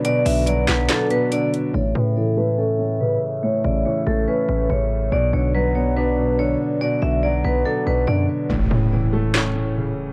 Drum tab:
HH |xoxxxxxx|--------|--------|--------|
CP |---xx---|--------|--------|--------|
SD |---oo---|--------|--------|--------|

HH |--------|--------|
CP |--------|----x---|
SD |--------|----o---|